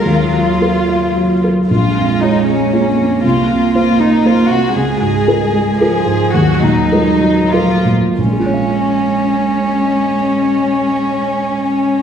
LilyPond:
<<
  \new Staff \with { instrumentName = "Violin section" } { \time 3/4 \key bes \minor \tempo 4 = 110 f'2~ f'8 r8 | f'4 ees'8 des'4. | f'4 f'8 ees'8 f'8 ges'8 | aes'2 aes'4 |
ges'8 ees'4. f'8 r8 | des'2.~ | des'2. | }
  \new Staff \with { instrumentName = "Ambient pad" } { \time 3/4 \key bes \minor <ges bes f''>2. | r2. | r2. | r2. |
r2. | r2. | r2. | }
  \new Staff \with { instrumentName = "Cello" } { \clef bass \time 3/4 \key bes \minor ges2~ ges8 r8 | aes2 bes8 bes8~ | bes2. | aes2 f4 |
ges4 aes8 ges8 f8 r8 | aes2.~ | aes2. | }
  \new Staff \with { instrumentName = "Felt piano" } { \clef bass \time 3/4 \key bes \minor ees,8 ges8 bes'8 f''8 ges8 bes'8 | bes,,8 f,8 <aes f' des''>8 aes8 <aes f' des''>8 f,8 | c,8 c8 <bes f' c''>8 bes8 <bes f' c''>8 c8 | des,8 aes,8 <aes f' bes'>8 aes8 <aes f' bes'>8 aes,8 |
ees,8 bes,8 <ges f' bes'>8 ges8 <ges f' bes'>8 bes,8 | <bes,, bes, aes f' des'' f''>2.~ | <bes,, bes, aes f' des'' f''>2. | }
>>